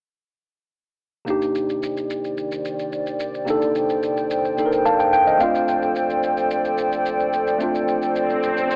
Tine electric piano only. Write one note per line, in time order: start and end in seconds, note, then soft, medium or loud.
1.25 3.43 C3 medium
1.25 3.43 A#3 medium
1.25 3.44 D4 medium
1.29 3.45 D#4 medium
1.29 3.45 G4 medium
3.45 4.54 C3 medium
3.45 4.55 A#3 medium
3.45 4.56 D4 medium
3.45 4.56 D#4 medium
3.51 4.57 A4 medium
4.57 5.40 C3 medium
4.57 5.40 A#3 soft
4.57 5.40 D4 soft
4.57 5.41 D#4 soft
4.57 4.65 A4 soft
4.66 5.44 A#4 medium
4.86 4.99 F5 medium
4.86 5.11 A5 medium
5.00 5.12 G5 medium
5.13 5.39 G5 medium
5.27 5.53 D#5 medium
5.38 7.55 A3 medium
5.38 7.56 C4 medium
5.38 7.57 D4 medium
5.38 5.66 F5 medium
5.43 7.58 F4 medium
7.58 8.76 A3 medium
7.58 8.76 C4 medium
7.58 8.76 D4 medium
7.63 8.76 F4 medium